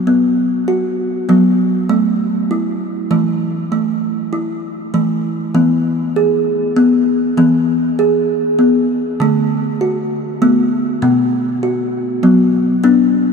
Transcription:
0.07 B3
0.68 F#4
1.29 F#3 B3
1.89 A3
2.51 E4
3.11 E3 A3
3.72 A3
4.33 E4
4.94 E3 A3
5.55 E3 B3
6.16 G#4
6.76 B3
7.37 E3 B3
7.99 G#4
8.59 B3
9.20 D3 A3
9.81 F#4
10.42 A3 B3
11.02 B2 B3
11.63 F#4
12.23 F#3 B3
12.84 B3 D4

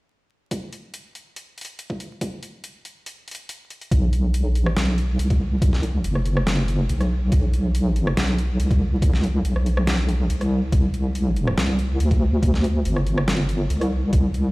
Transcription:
0.51 kick, closed hi-hat
0.73 closed hi-hat
0.94 closed hi-hat
1.15 closed hi-hat
1.36 closed hi-hat
1.58 closed hi-hat
1.61 closed hi-hat
1.65 closed hi-hat
1.79 closed hi-hat
1.90 kick
2.00 closed hi-hat
2.21 kick, closed hi-hat
2.43 closed hi-hat
2.64 closed hi-hat
2.85 closed hi-hat
3.06 closed hi-hat
3.28 closed hi-hat
3.31 closed hi-hat
3.35 closed hi-hat
3.49 closed hi-hat
3.70 closed hi-hat
3.81 closed hi-hat
3.91 B1, kick, closed hi-hat
4.13 closed hi-hat
4.34 closed hi-hat
4.50 A#1
4.55 closed hi-hat
4.66 cross-stick
4.77 B1, snare, closed hi-hat
4.98 closed hi-hat
5.19 C2, closed hi-hat
5.30 kick, closed hi-hat
5.62 kick, closed hi-hat
5.73 snare
5.83 closed hi-hat
6.04 F#1, closed hi-hat
6.15 cross-stick
6.26 closed hi-hat
6.37 cross-stick
6.47 snare, closed hi-hat
6.68 closed hi-hat
6.89 B1, closed hi-hat
7.01 cross-stick, closed hi-hat
7.32 B1, kick, closed hi-hat
7.53 closed hi-hat
7.75 closed hi-hat
7.96 closed hi-hat
8.07 cross-stick
8.17 B1, snare, closed hi-hat
8.38 closed hi-hat
8.60 C2, closed hi-hat
8.71 kick, closed hi-hat
9.02 kick, closed hi-hat
9.13 snare
9.24 closed hi-hat
9.45 B1, closed hi-hat
9.56 cross-stick
9.66 closed hi-hat
9.77 cross-stick
9.87 snare, closed hi-hat
10.09 closed hi-hat
10.30 C2, closed hi-hat
10.41 cross-stick, closed hi-hat
10.72 C2, kick, closed hi-hat
10.94 closed hi-hat
11.15 closed hi-hat
11.36 closed hi-hat
11.47 cross-stick
11.57 C2, snare, closed hi-hat
11.79 closed hi-hat
12.00 D2, closed hi-hat
12.11 kick, closed hi-hat
12.43 kick, closed hi-hat
12.54 snare
12.64 closed hi-hat
12.85 G1, closed hi-hat
12.96 cross-stick
13.07 closed hi-hat
13.18 cross-stick
13.28 snare, closed hi-hat
13.49 closed hi-hat
13.70 C2, closed hi-hat
13.81 cross-stick, closed hi-hat
14.13 C2, kick, closed hi-hat
14.34 closed hi-hat

